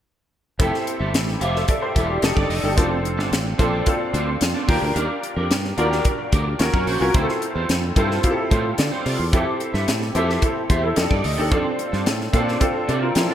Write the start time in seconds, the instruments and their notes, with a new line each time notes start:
0.59 fretless electric bass F1, grand piano C4 E4 G4 A4, clean electric guitar G4 A4 E5, kick, closed hi-hat
0.73 muted clean electric guitar stroke, snare
0.86 muted clean electric guitar stroke, closed hi-hat
1.00 fretless electric bass G1, clean electric guitar G4 A4 E5
1.13 fretless electric bass A1, muted clean electric guitar stroke, snare, closed hi-hat
1.27 muted clean electric guitar stroke, snare
1.41 fretless electric bass F1, clean electric guitar G4 A4 E5, grand piano C5 F5, closed hi-hat
1.54 clean electric guitar G4 A4 E5, grand piano A4 E5, snare
1.68 grand piano A4 D5, kick, closed hi-hat
1.81 grand piano G4 C5, muted clean electric guitar stroke
1.95 fretless electric bass E1, grand piano E4 A4, clean electric guitar G4 A4 E5, kick, closed hi-hat
2.08 grand piano D4 G4, muted clean electric guitar stroke
2.22 fretless electric bass F1, grand piano D4 D#4 G4 A4, muted clean electric guitar stroke, snare, closed hi-hat
2.35 fretless electric bass G1, clean electric guitar D#4 A4 D5, kick
2.49 fretless electric bass F1, clean electric guitar D#4 A4 D#5, open hi-hat
2.63 fretless electric bass G1, grand piano D4 D#4 G4 A4, muted clean electric guitar stroke
2.76 fretless electric bass F1, clean electric guitar C4 D4 A4, grand piano C4 D4 F4 A4, kick, closed hi-hat
2.90 muted clean electric guitar stroke
3.04 muted clean electric guitar stroke, closed hi-hat
3.17 fretless electric bass G1, clean electric guitar C4 D4 A4, snare
3.31 fretless electric bass A1, muted clean electric guitar stroke, snare, closed hi-hat
3.45 muted clean electric guitar stroke
3.58 fretless electric bass A#1, clean electric guitar C4 D4 A4, grand piano C4 D4 F4 A4, kick, closed hi-hat
3.72 clean electric guitar C4 D4 A4
3.86 grand piano C4 D4 F4 A4, kick, closed hi-hat
4.00 muted clean electric guitar stroke
4.13 fretless electric bass D2, clean electric guitar C4 D4 A4, closed hi-hat
4.27 muted clean electric guitar stroke
4.41 fretless electric bass F2, muted clean electric guitar stroke, snare, closed hi-hat
4.54 clean electric guitar C4 D4 A4
4.68 fretless electric bass D#2, clean electric guitar D4 G4 C5, grand piano D4 F4 G4 A#4, kick, open hi-hat
4.81 fretless electric bass D2, muted clean electric guitar stroke
4.95 fretless electric bass D#2, clean electric guitar D4 G4 A#4, closed hi-hat
5.09 muted clean electric guitar stroke
5.23 muted clean electric guitar stroke, closed hi-hat
5.36 fretless electric bass F2, clean electric guitar D4 G4 A#4
5.50 fretless electric bass G2, muted clean electric guitar stroke, snare, closed hi-hat
5.64 muted clean electric guitar stroke, snare
5.77 fretless electric bass D#2, clean electric guitar D4 G4 A#4, grand piano D4 F4 F#4 A#4, closed hi-hat
5.84 grand piano G4
5.91 clean electric guitar D4 G4 A#4, snare
6.05 kick, closed hi-hat
6.18 muted clean electric guitar stroke
6.32 fretless electric bass D2, clean electric guitar D4 G4 A#4, kick, closed hi-hat
6.45 muted clean electric guitar stroke
6.59 fretless electric bass D#2, grand piano C#4 F4 F#4 A#4, muted clean electric guitar stroke, snare, closed hi-hat
6.73 fretless electric bass F#2, clean electric guitar C#4 F#4 A#4, kick
6.86 fretless electric bass A#1, clean electric guitar C#4 F#4 C5, open hi-hat
7.00 fretless electric bass C2, grand piano C#4 F4 F#4 A#4, muted clean electric guitar stroke
7.14 fretless electric bass D2, grand piano C4 E4 F4 G4, clean electric guitar F4 A4 C5, kick, closed hi-hat
7.22 grand piano A4
7.28 muted clean electric guitar stroke, snare
7.42 muted clean electric guitar stroke, closed hi-hat
7.55 fretless electric bass E2, clean electric guitar F4 A4 C5
7.69 fretless electric bass F2, muted clean electric guitar stroke, snare, closed hi-hat
7.83 muted clean electric guitar stroke
7.96 fretless electric bass G2, grand piano C4 E4 F4 A4, clean electric guitar F4 A4 C5, kick, closed hi-hat
8.09 clean electric guitar F4 A4 C5, snare
8.23 grand piano C4 E4 F4 G4, kick, closed hi-hat
8.31 grand piano A4
8.37 muted clean electric guitar stroke
8.50 fretless electric bass A2, clean electric guitar F4 A4 C5, kick, closed hi-hat
8.64 muted clean electric guitar stroke
8.78 fretless electric bass D3, grand piano D5, muted clean electric guitar stroke, snare, closed hi-hat
8.92 clean electric guitar F4 A4 C5
9.05 fretless electric bass C3, clean electric guitar F4 A4 D5, open hi-hat
9.19 fretless electric bass E2, muted clean electric guitar stroke
9.32 fretless electric bass F2, grand piano C4 E4 G4 A4, clean electric guitar G4 A4 E5, kick, closed hi-hat
9.46 muted clean electric guitar stroke
9.60 muted clean electric guitar stroke, closed hi-hat
9.74 fretless electric bass G2, clean electric guitar G4 A4 E5, snare
9.87 fretless electric bass A2, muted clean electric guitar stroke, snare, closed hi-hat
10.01 muted clean electric guitar stroke, snare
10.15 fretless electric bass F2, grand piano C4 E4 G4 A4, clean electric guitar G4 A4 E5, closed hi-hat
10.28 clean electric guitar G4 A4 E5, snare
10.42 grand piano E4 A4, kick, closed hi-hat
10.56 muted clean electric guitar stroke
10.70 fretless electric bass E2, clean electric guitar G4 A4 E5, grand piano G4 C5, kick, closed hi-hat
10.83 grand piano E4 A4, muted clean electric guitar stroke
10.96 fretless electric bass F2, grand piano D4 D#4 G4 A4, muted clean electric guitar stroke, snare, closed hi-hat
11.10 fretless electric bass G2, clean electric guitar D#4 A4 D5, kick
11.24 fretless electric bass D2, clean electric guitar D#4 A4 D#5, open hi-hat
11.37 fretless electric bass D#2, grand piano D4 D#4 G4 A4, muted clean electric guitar stroke
11.51 fretless electric bass F2, grand piano C4 D4 F4 A4, clean electric guitar C4 D4 A4, kick, closed hi-hat
11.65 muted clean electric guitar stroke
11.79 muted clean electric guitar stroke, closed hi-hat
11.92 fretless electric bass G2, clean electric guitar C4 D4 A4, snare
12.06 fretless electric bass A2, muted clean electric guitar stroke, snare, closed hi-hat
12.20 muted clean electric guitar stroke, snare
12.33 fretless electric bass A#2, grand piano C4 D4 F4 A4, clean electric guitar C4 D4 A4, kick, closed hi-hat
12.47 clean electric guitar C4 D4 A4, snare
12.60 grand piano C4 D4 F4 A4, kick, closed hi-hat
12.74 muted clean electric guitar stroke
12.88 fretless electric bass C3, clean electric guitar C4 D4 A4, grand piano A4 D5, closed hi-hat
13.02 grand piano F4 A#4, muted clean electric guitar stroke
13.15 fretless electric bass F3, grand piano E4 A4, muted clean electric guitar stroke, snare, closed hi-hat
13.29 grand piano C4 F4, clean electric guitar C4 D4 A4